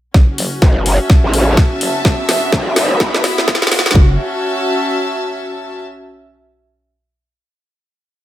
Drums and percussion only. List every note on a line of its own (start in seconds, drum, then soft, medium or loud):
0.14 kick loud
0.14 snare soft
0.38 open hi-hat loud
0.62 kick loud
0.62 snare soft
0.86 open hi-hat medium
1.10 kick loud
1.10 snare medium
1.34 open hi-hat loud
1.57 kick loud
1.57 snare medium
1.81 open hi-hat medium
2.05 kick loud
2.05 snare medium
2.29 snare medium
2.29 open hi-hat loud
2.52 kick loud
2.52 snare medium
2.76 snare medium
2.76 open hi-hat medium
3.00 kick loud
3.00 snare medium
3.14 snare medium
3.24 snare loud
3.24 open hi-hat loud
3.38 snare medium
3.48 kick loud
3.48 snare loud
3.55 snare medium
3.62 snare medium
3.67 snare medium
3.72 snare loud
3.72 open hi-hat medium
3.79 snare medium
3.86 snare loud
3.91 snare loud
3.95 kick loud